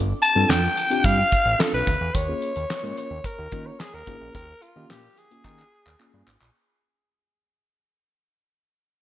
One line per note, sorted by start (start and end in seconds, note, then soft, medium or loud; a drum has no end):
0.00 0.13 G1 loud
0.22 0.51 A5 loud
0.22 closed hi-hat medium
0.35 0.45 G2 loud
0.35 0.58 C4 medium
0.35 0.58 D4 medium
0.35 0.58 F4 medium
0.35 0.58 A4 loud
0.49 0.68 F2 medium
0.49 1.07 G5 loud
0.49 snare loud
0.49 clap loud
0.49 closed hi-hat loud
0.77 closed hi-hat medium
0.90 1.19 C4 medium
0.90 1.19 D4 medium
0.90 1.19 F4 medium
0.90 1.19 G4 medium
0.90 closed hi-hat medium
1.04 1.23 G2 loud
1.04 1.62 F5 loud
1.04 kick loud
1.04 closed hi-hat medium
1.32 kick loud
1.32 closed hi-hat medium
1.46 1.55 A1 loud
1.59 1.87 C4 medium
1.59 1.87 D4 medium
1.59 1.88 F4 medium
1.59 1.88 A4 medium
1.59 1.74 A4 loud
1.59 snare loud
1.59 clap loud
1.59 closed hi-hat medium
1.73 1.83 B1 medium
1.73 2.16 B4 loud
1.87 1.97 D2 loud
1.87 kick loud
1.87 closed hi-hat medium
2.01 2.10 E2 loud
2.15 2.34 D#2 loud
2.15 2.97 C#5 loud
2.15 kick loud
2.15 closed hi-hat loud
2.28 2.51 A#3 medium
2.28 2.51 C#4 medium
2.28 2.51 F4 medium
2.28 2.51 G#4 medium
2.42 closed hi-hat medium
2.56 2.66 D#2 loud
2.56 closed hi-hat medium
2.70 snare loud
2.70 clap loud
2.70 closed hi-hat loud
2.83 2.93 G#2 medium
2.83 3.11 A#3 medium
2.83 3.11 C#4 medium
2.83 3.11 F4 medium
2.83 3.12 A#4 medium
2.97 3.27 C#5 loud
2.97 closed hi-hat medium
3.11 3.20 D#2 loud
3.24 3.68 A#4 loud
3.24 kick loud
3.24 closed hi-hat medium
3.38 3.48 D#2 loud
3.52 3.71 D#3 loud
3.52 3.74 A#3 medium
3.52 3.75 C#4 medium
3.52 3.75 F4 medium
3.52 3.75 A#4 medium
3.52 kick loud
3.52 closed hi-hat medium
3.67 3.82 C#5 medium
3.80 3.96 G#4 loud
3.80 snare loud
3.80 clap loud
3.80 closed hi-hat medium
3.94 4.03 D#2 medium
3.94 4.35 A#4 loud
4.07 4.17 G#1 loud
4.07 4.35 A#3 medium
4.07 4.35 C#4 medium
4.07 4.35 F4 medium
4.07 4.35 G#4 medium
4.07 kick loud
4.07 closed hi-hat medium
4.21 4.30 A#1 loud
4.35 4.54 D#2 loud
4.35 4.64 A#4 loud
4.35 kick loud
4.35 closed hi-hat loud
4.62 4.90 F4 medium
4.62 closed hi-hat medium
4.76 4.86 D#3 medium
4.76 4.98 A#3 medium
4.76 4.98 C#4 medium
4.76 4.99 F4 medium
4.76 4.99 G4 loud
4.90 5.09 A#2 medium
4.90 5.19 G4 medium
4.90 snare loud
4.90 clap loud
4.90 closed hi-hat loud
5.17 6.28 G#4 loud
5.17 closed hi-hat medium
5.31 5.59 A#3 loud
5.31 5.59 C#4 medium
5.31 5.59 F4 medium
5.31 5.59 G#4 medium
5.31 closed hi-hat medium
5.45 5.64 D#3 loud
5.45 kick loud
5.45 clap medium
5.59 clap medium
5.86 5.96 D#2 medium
5.86 clap medium
5.99 6.28 A#3 medium
5.99 6.28 C#4 medium
5.99 6.28 F4 medium
5.99 6.28 G#4 loud
5.99 clap medium
6.14 6.23 G2 loud
6.27 6.37 G#1 loud
6.27 clap loud
6.41 6.51 A#1 medium
6.41 clap loud